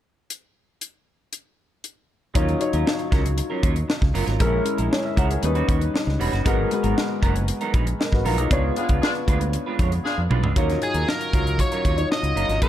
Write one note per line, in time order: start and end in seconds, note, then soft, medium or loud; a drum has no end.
0.30 closed hi-hat medium
0.81 closed hi-hat medium
1.33 closed hi-hat medium
1.84 closed hi-hat soft
2.34 2.54 D#2 medium
2.34 2.58 F#3 medium
2.34 2.58 C#4 medium
2.34 2.58 D#4 medium
2.34 2.59 F4 medium
2.34 2.58 F4 medium
2.34 2.59 A#4 medium
2.34 2.59 C#5 medium
2.34 kick loud
2.34 closed hi-hat medium
2.48 closed hi-hat soft
2.60 3.53 F#3 medium
2.60 3.53 D#4 medium
2.60 3.53 F4 medium
2.60 3.53 C#5 medium
2.60 muted clean electric guitar stroke soft
2.60 closed hi-hat medium
2.73 2.83 D#2 medium
2.73 2.85 F#3 soft
2.73 2.85 C#4 medium
2.73 2.85 F4 medium
2.73 2.85 A#4 medium
2.73 closed hi-hat soft
2.86 muted clean electric guitar stroke soft
2.86 snare loud
2.99 muted clean electric guitar stroke medium
2.99 closed hi-hat soft
3.11 3.40 C#2 medium
3.11 3.28 F#3 medium
3.11 3.24 C#4 medium
3.11 3.23 F4 medium
3.11 3.23 A#4 medium
3.11 kick medium
3.11 snare soft
3.11 closed hi-hat medium
3.24 muted clean electric guitar stroke soft
3.24 closed hi-hat medium
3.37 muted clean electric guitar stroke soft
3.37 closed hi-hat medium
3.50 3.61 F#3 medium
3.50 3.62 C#4 medium
3.50 3.62 F4 medium
3.50 3.63 A#4 medium
3.63 3.82 D#2 medium
3.63 3.76 F#3 medium
3.63 3.75 C#4 medium
3.63 3.75 F4 medium
3.63 3.75 C#5 medium
3.63 kick medium
3.63 closed hi-hat medium
3.76 muted clean electric guitar stroke soft
3.76 closed hi-hat soft
3.88 muted clean electric guitar stroke soft
3.88 snare medium
4.01 4.11 C#2 medium
4.01 muted clean electric guitar stroke medium
4.01 kick medium
4.01 snare soft
4.14 4.24 F#1 medium
4.14 4.26 F#3 medium
4.14 4.26 C#4 medium
4.14 4.25 F4 medium
4.14 4.25 A#4 loud
4.14 open hi-hat medium
4.26 4.37 G#1 medium
4.26 4.39 F#3 medium
4.26 4.39 C#4 soft
4.26 4.40 F4 medium
4.26 4.39 A#4 medium
4.26 snare soft
4.26 closed hi-hat soft
4.39 4.59 A#1 loud
4.39 4.63 G#3 medium
4.39 4.64 C#4 medium
4.39 4.63 C#4 medium
4.39 4.64 E4 medium
4.39 4.64 A#4 medium
4.39 kick loud
4.39 closed hi-hat medium
4.65 muted clean electric guitar stroke soft
4.65 closed hi-hat medium
4.78 4.88 A#1 medium
4.78 4.89 G#3 soft
4.78 4.90 C#4 medium
4.78 4.90 E4 medium
4.78 4.92 E4 soft
4.78 4.90 A#4 medium
4.78 4.91 A#4 medium
4.78 closed hi-hat soft
4.91 5.04 G#4 medium
4.91 5.04 C#5 medium
4.91 muted clean electric guitar stroke soft
4.91 snare loud
5.04 5.17 A#4 medium
5.04 5.17 E5 medium
5.04 muted clean electric guitar stroke soft
5.16 5.36 C#2 medium
5.16 5.33 G#3 medium
5.16 5.29 C#4 medium
5.16 5.29 E4 medium
5.16 5.28 A#4 medium
5.16 5.30 C#5 medium
5.16 5.30 F#5 medium
5.16 kick medium
5.16 closed hi-hat medium
5.29 5.55 C#5 soft
5.29 5.55 G#5 medium
5.29 muted clean electric guitar stroke soft
5.29 closed hi-hat medium
5.42 5.62 D#2 loud
5.42 6.35 G3 medium
5.42 6.35 C#4 medium
5.42 6.36 D#4 medium
5.42 6.36 B4 medium
5.42 muted clean electric guitar stroke soft
5.42 closed hi-hat medium
5.55 5.66 G3 medium
5.55 5.67 C#4 medium
5.55 5.67 F#4 medium
5.55 5.69 B4 medium
5.55 closed hi-hat soft
5.67 5.87 D#2 medium
5.67 5.81 G3 medium
5.67 5.80 C#4 medium
5.67 5.80 F#4 medium
5.67 5.81 C#5 medium
5.67 kick medium
5.67 closed hi-hat medium
5.81 muted clean electric guitar stroke medium
5.81 closed hi-hat soft
5.93 muted clean electric guitar stroke soft
5.93 snare medium
6.07 6.16 C#2 medium
6.07 muted clean electric guitar stroke medium
6.07 snare soft
6.19 6.29 E1 medium
6.19 6.32 G3 medium
6.19 6.32 C#4 loud
6.19 6.31 F#4 medium
6.19 6.31 B4 medium
6.19 open hi-hat medium
6.32 6.42 F#1 medium
6.32 6.44 G3 soft
6.32 6.45 C#4 soft
6.32 6.45 F#4 medium
6.32 6.45 B4 medium
6.32 snare soft
6.32 closed hi-hat soft
6.44 6.64 G#1 medium
6.44 6.69 F#3 medium
6.44 6.69 G#3 medium
6.44 6.69 B3 medium
6.44 6.69 D#4 medium
6.44 6.69 F#4 medium
6.44 6.69 A#4 loud
6.44 kick loud
6.44 closed hi-hat medium
6.70 7.64 G#3 medium
6.70 7.64 B3 medium
6.70 7.64 F#4 medium
6.70 7.64 B4 medium
6.70 muted clean electric guitar stroke soft
6.70 closed hi-hat medium
6.83 6.93 G#1 medium
6.83 6.95 F#3 soft
6.83 6.95 B3 medium
6.83 6.95 D#4 medium
6.83 6.95 A#4 medium
6.83 closed hi-hat soft
6.96 muted clean electric guitar stroke soft
6.96 snare loud
7.09 muted clean electric guitar stroke soft
7.22 7.50 F#1 loud
7.22 7.38 F#3 medium
7.22 7.35 B3 loud
7.22 7.34 D#4 medium
7.22 7.34 A#4 loud
7.22 kick medium
7.22 closed hi-hat medium
7.35 muted clean electric guitar stroke soft
7.35 closed hi-hat medium
7.48 muted clean electric guitar stroke soft
7.48 closed hi-hat medium
7.61 7.72 F#3 medium
7.61 7.73 B3 medium
7.61 7.73 D#4 medium
7.61 7.74 A#4 medium
7.61 closed hi-hat soft
7.74 7.92 A#1 medium
7.74 7.87 F#3 medium
7.74 7.86 B3 medium
7.74 7.86 D#4 medium
7.74 7.86 B4 medium
7.74 kick medium
7.74 closed hi-hat medium
7.86 muted clean electric guitar stroke medium
7.86 closed hi-hat medium
7.99 8.12 A#4 medium
7.99 8.12 D#5 medium
7.99 muted clean electric guitar stroke soft
7.99 snare medium
8.12 8.22 G#1 medium
8.12 8.25 F#4 medium
8.12 8.25 B4 medium
8.12 muted clean electric guitar stroke soft
8.12 kick medium
8.12 snare soft
8.25 8.37 A#1 medium
8.25 8.38 F#3 medium
8.25 8.37 B3 medium
8.25 8.37 D#4 medium
8.25 8.38 F4 medium
8.25 8.37 A#4 medium
8.25 open hi-hat medium
8.37 8.47 B1 medium
8.37 8.50 F#3 medium
8.37 8.50 B3 medium
8.37 8.51 D#4 medium
8.37 8.63 D#4 soft
8.37 8.63 G#4 medium
8.37 8.51 A#4 medium
8.37 closed hi-hat soft
8.51 8.69 C#2 medium
8.51 8.74 G#3 medium
8.51 8.74 B3 medium
8.51 8.74 D4 medium
8.51 8.75 F4 medium
8.51 8.74 F4 medium
8.51 8.75 B4 medium
8.51 8.75 C#5 loud
8.51 kick loud
8.51 closed hi-hat medium
8.76 9.69 B3 medium
8.76 9.69 D4 medium
8.76 8.88 D4 medium
8.76 8.88 F4 medium
8.76 9.69 F4 medium
8.76 8.88 G#4 medium
8.76 9.69 B4 medium
8.76 muted clean electric guitar stroke soft
8.76 closed hi-hat medium
8.89 8.99 C#2 medium
8.89 9.01 G#3 soft
8.89 9.02 D4 medium
8.89 9.02 F4 medium
8.89 9.02 B4 medium
8.89 kick medium
8.89 closed hi-hat medium
9.02 9.10 D4 loud
9.02 9.10 F4 medium
9.02 9.10 G#4 loud
9.02 muted clean electric guitar stroke soft
9.02 snare loud
9.15 muted clean electric guitar stroke soft
9.15 closed hi-hat soft
9.27 9.56 D2 medium
9.27 9.44 G#3 medium
9.27 9.40 D4 medium
9.27 9.40 F4 medium
9.27 9.39 B4 medium
9.27 kick medium
9.27 closed hi-hat medium
9.40 muted clean electric guitar stroke soft
9.40 closed hi-hat medium
9.53 muted clean electric guitar stroke soft
9.53 closed hi-hat medium
9.66 9.78 G#3 medium
9.66 9.78 D4 medium
9.66 9.79 F4 medium
9.66 9.80 B4 medium
9.79 9.98 F2 medium
9.79 9.92 G#3 medium
9.79 9.92 D4 medium
9.79 9.91 F4 medium
9.79 9.92 C#5 medium
9.79 kick medium
9.79 closed hi-hat medium
9.92 muted clean electric guitar stroke soft
9.92 closed hi-hat soft
10.04 10.21 D4 medium
10.04 10.21 F4 medium
10.04 10.21 G#4 medium
10.04 muted clean electric guitar stroke soft
10.04 snare soft
10.17 10.27 F2 medium
10.17 muted clean electric guitar stroke soft
10.30 10.43 B1 medium
10.30 10.43 G#3 medium
10.30 10.42 D4 medium
10.30 10.42 F4 medium
10.30 10.41 B4 medium
10.30 mid tom medium
10.43 10.52 C#2 medium
10.43 10.55 G#3 soft
10.43 10.56 D4 medium
10.43 10.55 F4 medium
10.43 10.56 B4 medium
10.43 floor tom medium
10.56 10.75 D#2 medium
10.56 10.80 F#3 medium
10.56 11.25 F#3 medium
10.56 10.80 C#4 medium
10.56 11.25 D#4 medium
10.56 10.80 F4 medium
10.56 11.26 F4 medium
10.56 10.80 A#4 medium
10.56 11.26 C#5 medium
10.56 kick loud
10.56 closed hi-hat medium
10.70 snare soft
10.70 closed hi-hat soft
10.81 11.09 G#4 medium
10.81 muted clean electric guitar stroke soft
10.81 closed hi-hat medium
10.94 11.04 D#2 medium
10.94 11.06 F#3 soft
10.94 11.07 C#4 soft
10.94 11.07 F4 soft
10.94 11.07 A#4 medium
10.94 closed hi-hat soft
11.08 11.61 A#4 medium
11.08 muted clean electric guitar stroke soft
11.08 snare medium
11.21 muted clean electric guitar stroke soft
11.21 closed hi-hat soft
11.33 11.61 C#2 medium
11.33 11.91 F#3 medium
11.33 11.50 F#3 medium
11.33 11.46 C#4 medium
11.33 11.91 D#4 medium
11.33 11.91 F4 medium
11.33 11.46 F4 medium
11.33 11.45 A#4 medium
11.33 11.91 C#5 medium
11.33 kick medium
11.33 closed hi-hat medium
11.47 muted clean electric guitar stroke soft
11.47 closed hi-hat soft
11.59 12.08 C#5 medium
11.59 muted clean electric guitar stroke soft
11.59 kick medium
11.59 closed hi-hat medium
11.72 11.83 F#3 medium
11.72 11.83 C#4 medium
11.72 11.84 F4 medium
11.72 11.85 A#4 medium
11.72 closed hi-hat soft
11.84 12.03 D#2 medium
11.84 11.97 F#3 medium
11.84 11.97 C#4 medium
11.84 11.97 F4 medium
11.84 11.97 C#5 medium
11.84 kick medium
11.84 closed hi-hat medium
11.97 12.55 F#3 medium
11.97 12.55 D#4 medium
11.97 12.55 F4 medium
11.97 12.56 C#5 medium
11.97 muted clean electric guitar stroke soft
11.97 closed hi-hat soft
12.10 12.59 D#5 loud
12.10 muted clean electric guitar stroke soft
12.10 snare medium
12.23 12.32 C#2 medium
12.23 muted clean electric guitar stroke soft
12.23 closed hi-hat soft
12.35 12.45 F#1 medium
12.35 12.49 F#3 medium
12.35 12.48 C#4 medium
12.35 12.48 F4 medium
12.35 12.47 A#4 medium
12.35 closed hi-hat medium
12.48 12.58 G#1 medium
12.48 12.61 F#3 soft
12.48 12.60 C#4 soft
12.48 12.61 F4 medium
12.48 12.61 A#4 medium
12.48 snare soft
12.48 closed hi-hat soft
12.61 12.69 A#1 medium
12.61 12.69 G#3 medium
12.61 12.69 C#4 medium
12.61 12.69 E4 medium
12.61 12.69 A#4 medium
12.61 12.69 C#5 medium
12.61 kick loud
12.61 closed hi-hat medium